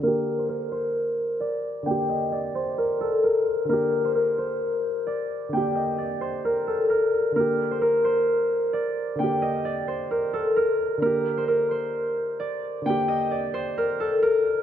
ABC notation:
X:1
M:4/4
L:1/16
Q:1/4=131
K:Gm
V:1 name="Harp"
B3 c B2 c6 d4 | g2 e2 d2 c2 B2 A2 B4 | B3 c B2 c6 d4 | g2 e2 d2 c2 B2 A2 B2 z2 |
B3 c B2 c6 d4 | g2 e2 d2 c2 B2 A2 B4 | B3 c B2 c6 d4 | g2 e2 d2 c2 B2 A2 B2 z2 |]
V:2 name="Grand piano"
[D,B,G]16 | [D,B,G]16 | [D,B,G]16 | [D,B,G]16 |
[D,B,G]16 | [D,B,G]16 | [D,B,G]16 | [D,B,G]16 |]